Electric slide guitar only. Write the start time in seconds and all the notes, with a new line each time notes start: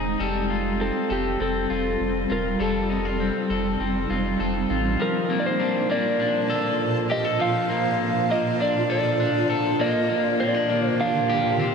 0.81 A4
1.12 G4
1.42 A4
2.32 A#4
2.62 A4
5.02 A#4
5.40 D5
5.46 C5
5.92 D5
7.11 D#5
7.41 F5
8.31 D#5
8.62 D5
8.92 D5
9.81 D#5
10.25 D5
10.40 D5
10.87 C5
11.00 F5